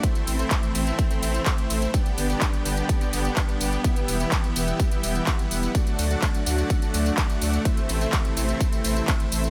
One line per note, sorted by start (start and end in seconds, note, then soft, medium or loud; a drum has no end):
0.00 1.92 E3 medium
0.00 1.90 A3 medium
0.00 0.36 A3 medium
0.00 1.92 C4 loud
0.00 0.36 C4 medium
0.00 0.36 E4 medium
0.00 0.36 C5 medium
0.00 0.36 E5 medium
0.00 kick loud
0.00 closed hi-hat medium
0.00 ride medium
0.00 tambourine soft
0.15 closed hi-hat soft
0.15 tambourine soft
0.27 0.44 A1 loud
0.27 open hi-hat loud
0.27 tambourine medium
0.39 0.72 A3 medium
0.39 0.72 C4 medium
0.39 0.72 E4 medium
0.39 0.72 C5 medium
0.39 0.72 E5 medium
0.39 closed hi-hat soft
0.39 tambourine soft
0.51 kick loud
0.51 clap loud
0.51 closed hi-hat medium
0.51 ride medium
0.51 tambourine soft
0.63 closed hi-hat soft
0.63 tambourine soft
0.75 0.92 A1 medium
0.75 1.08 A3 medium
0.75 1.08 C4 medium
0.75 1.08 E4 medium
0.75 1.08 C5 medium
0.75 1.08 E5 medium
0.75 open hi-hat loud
0.75 tambourine medium
0.87 closed hi-hat soft
0.87 tambourine soft
0.99 kick loud
0.99 closed hi-hat medium
0.99 ride medium
0.99 tambourine soft
1.11 1.43 A3 medium
1.11 1.43 C4 medium
1.11 1.43 E4 medium
1.11 1.43 C5 medium
1.11 1.43 E5 medium
1.11 closed hi-hat soft
1.11 tambourine soft
1.22 1.39 A1 medium
1.22 open hi-hat loud
1.22 tambourine medium
1.34 closed hi-hat soft
1.34 tambourine soft
1.46 1.91 A3 medium
1.46 1.91 C4 medium
1.46 1.91 E4 medium
1.46 1.91 C5 medium
1.46 1.91 E5 loud
1.46 kick loud
1.46 clap loud
1.46 closed hi-hat medium
1.46 ride medium
1.46 tambourine soft
1.58 closed hi-hat soft
1.58 tambourine soft
1.70 1.87 A1 medium
1.70 open hi-hat loud
1.70 tambourine medium
1.82 closed hi-hat soft
1.82 tambourine soft
1.94 3.83 D3 medium
1.94 5.71 G3 medium
1.94 2.27 B3 medium
1.94 5.71 B3 loud
1.94 2.27 D4 medium
1.94 2.27 G4 medium
1.94 2.27 D5 medium
1.94 2.27 G5 medium
1.94 kick loud
1.94 closed hi-hat medium
1.94 ride medium
1.94 tambourine soft
2.06 closed hi-hat soft
2.06 tambourine soft
2.18 2.35 G1 loud
2.18 open hi-hat loud
2.18 tambourine medium
2.30 2.62 B3 medium
2.30 2.62 D4 medium
2.30 2.62 G4 medium
2.30 2.62 D5 medium
2.30 2.62 G5 medium
2.30 closed hi-hat soft
2.30 tambourine soft
2.41 kick loud
2.41 clap loud
2.41 closed hi-hat medium
2.41 ride medium
2.41 tambourine soft
2.54 closed hi-hat soft
2.54 tambourine soft
2.65 2.82 G1 medium
2.65 2.98 B3 medium
2.65 2.98 D4 medium
2.65 2.98 G4 medium
2.65 2.98 D5 medium
2.65 2.98 G5 medium
2.65 open hi-hat loud
2.65 tambourine medium
2.77 closed hi-hat soft
2.77 tambourine soft
2.89 kick loud
2.89 closed hi-hat medium
2.89 ride medium
2.89 tambourine soft
3.01 3.34 B3 medium
3.01 3.34 D4 medium
3.01 3.34 G4 medium
3.01 3.34 D5 medium
3.01 3.34 G5 medium
3.01 closed hi-hat soft
3.01 tambourine soft
3.13 3.30 G1 medium
3.13 open hi-hat loud
3.13 tambourine medium
3.25 closed hi-hat soft
3.25 tambourine soft
3.37 3.81 B3 medium
3.37 3.81 D4 medium
3.37 3.81 G4 medium
3.37 3.81 D5 medium
3.37 3.81 G5 medium
3.37 kick loud
3.37 clap loud
3.37 closed hi-hat medium
3.37 ride medium
3.37 tambourine soft
3.49 closed hi-hat soft
3.49 tambourine soft
3.61 3.77 G1 medium
3.61 open hi-hat loud
3.61 tambourine medium
3.73 closed hi-hat soft
3.73 tambourine soft
3.84 5.73 E3 medium
3.84 4.17 B3 medium
3.84 4.17 E4 medium
3.84 4.17 G4 medium
3.84 4.17 E5 medium
3.84 4.17 G5 medium
3.84 kick loud
3.84 closed hi-hat medium
3.84 ride medium
3.84 tambourine soft
3.96 closed hi-hat soft
3.96 tambourine soft
4.08 4.25 E1 loud
4.08 open hi-hat loud
4.08 tambourine medium
4.20 4.53 B3 medium
4.20 4.53 E4 medium
4.20 4.53 G4 medium
4.20 4.53 E5 medium
4.20 4.53 G5 medium
4.20 closed hi-hat soft
4.20 tambourine soft
4.32 kick loud
4.32 clap loud
4.32 closed hi-hat medium
4.32 ride medium
4.32 tambourine soft
4.44 closed hi-hat soft
4.44 tambourine soft
4.56 4.73 E1 medium
4.56 4.89 B3 medium
4.56 4.89 E4 medium
4.56 4.89 G4 medium
4.56 4.89 E5 medium
4.56 4.89 G5 medium
4.56 open hi-hat loud
4.56 tambourine medium
4.68 closed hi-hat soft
4.68 tambourine soft
4.80 kick loud
4.80 closed hi-hat medium
4.80 ride medium
4.80 tambourine soft
4.91 5.24 B3 medium
4.91 5.24 E4 medium
4.91 5.24 G4 medium
4.91 5.24 E5 medium
4.91 5.24 G5 medium
4.91 closed hi-hat soft
4.91 tambourine soft
5.03 5.20 E1 medium
5.03 open hi-hat loud
5.03 tambourine medium
5.15 closed hi-hat soft
5.15 tambourine soft
5.27 5.72 B3 loud
5.27 5.72 E4 medium
5.27 5.72 G4 medium
5.27 5.72 E5 medium
5.27 5.72 F#5 loud
5.27 kick loud
5.27 clap loud
5.27 closed hi-hat medium
5.27 ride medium
5.27 tambourine soft
5.39 closed hi-hat soft
5.39 tambourine soft
5.51 5.68 E1 medium
5.51 open hi-hat loud
5.51 tambourine medium
5.63 closed hi-hat soft
5.63 tambourine soft
5.75 7.63 D3 medium
5.75 7.63 F#3 medium
5.75 9.50 A3 medium
5.75 6.08 A3 medium
5.75 6.08 D4 medium
5.75 6.08 F#4 medium
5.75 6.08 D5 medium
5.75 6.08 F#5 medium
5.75 kick loud
5.75 closed hi-hat medium
5.75 ride medium
5.75 tambourine soft
5.87 closed hi-hat soft
5.87 tambourine soft
5.99 6.15 D2 loud
5.99 open hi-hat loud
5.99 tambourine medium
6.11 6.43 A3 medium
6.11 6.43 D4 medium
6.11 6.43 F#4 medium
6.11 6.43 D5 medium
6.11 6.43 F#5 medium
6.11 closed hi-hat soft
6.11 tambourine soft
6.22 kick loud
6.22 clap loud
6.22 closed hi-hat medium
6.22 ride medium
6.22 tambourine soft
6.34 closed hi-hat soft
6.34 tambourine soft
6.46 6.63 D2 medium
6.46 6.79 A3 medium
6.46 6.79 D4 medium
6.46 6.79 F#4 medium
6.46 6.79 D5 medium
6.46 6.79 F#5 medium
6.46 open hi-hat loud
6.46 tambourine medium
6.58 closed hi-hat soft
6.58 tambourine soft
6.70 kick loud
6.70 closed hi-hat medium
6.70 ride medium
6.70 tambourine soft
6.82 7.15 A3 medium
6.82 7.15 D4 medium
6.82 7.15 F#4 medium
6.82 7.15 D5 medium
6.82 7.15 F#5 medium
6.82 closed hi-hat soft
6.82 tambourine soft
6.94 7.11 D2 medium
6.94 open hi-hat loud
6.94 tambourine medium
7.06 closed hi-hat soft
7.06 tambourine soft
7.17 7.62 A3 medium
7.17 7.62 D4 medium
7.17 7.62 F#4 medium
7.17 7.62 D5 medium
7.17 7.62 F#5 medium
7.17 kick loud
7.17 clap loud
7.17 closed hi-hat medium
7.17 ride medium
7.17 tambourine soft
7.30 closed hi-hat soft
7.30 tambourine soft
7.41 7.58 D2 medium
7.41 open hi-hat loud
7.41 tambourine medium
7.53 closed hi-hat soft
7.53 tambourine soft
7.65 9.50 C3 medium
7.65 9.50 E3 medium
7.65 7.98 A3 medium
7.65 7.98 C4 medium
7.65 7.98 E4 medium
7.65 7.98 C5 medium
7.65 7.98 E5 medium
7.65 kick loud
7.65 closed hi-hat medium
7.65 ride medium
7.65 tambourine soft
7.77 closed hi-hat soft
7.77 tambourine soft
7.89 8.06 A1 loud
7.89 open hi-hat loud
7.89 tambourine medium
8.01 8.34 A3 medium
8.01 8.34 C4 medium
8.01 8.34 E4 medium
8.01 8.34 C5 medium
8.01 8.34 E5 medium
8.01 closed hi-hat soft
8.01 tambourine soft
8.13 kick loud
8.13 clap loud
8.13 closed hi-hat medium
8.13 ride medium
8.13 tambourine soft
8.25 closed hi-hat soft
8.25 tambourine soft
8.37 8.54 A1 loud
8.37 8.70 A3 medium
8.37 8.70 C4 medium
8.37 8.70 E4 medium
8.37 8.70 C5 medium
8.37 8.70 E5 medium
8.37 open hi-hat loud
8.37 tambourine medium
8.49 closed hi-hat soft
8.49 tambourine soft
8.61 kick loud
8.61 closed hi-hat medium
8.61 ride medium
8.61 tambourine soft
8.72 9.05 A3 medium
8.72 9.05 C4 medium
8.72 9.05 E4 medium
8.72 9.05 C5 medium
8.72 9.05 E5 medium
8.72 closed hi-hat soft
8.72 tambourine soft
8.84 9.01 A1 medium
8.84 open hi-hat loud
8.84 tambourine medium
8.96 closed hi-hat soft
8.96 tambourine soft
9.08 9.50 A3 medium
9.08 9.50 C4 medium
9.08 9.50 E4 medium
9.08 9.50 C5 medium
9.08 9.50 E5 loud
9.08 kick loud
9.08 clap loud
9.08 closed hi-hat medium
9.08 ride medium
9.08 tambourine soft
9.20 closed hi-hat soft
9.20 tambourine soft
9.32 9.49 A1 medium
9.32 open hi-hat loud
9.32 tambourine medium
9.44 closed hi-hat soft
9.44 tambourine soft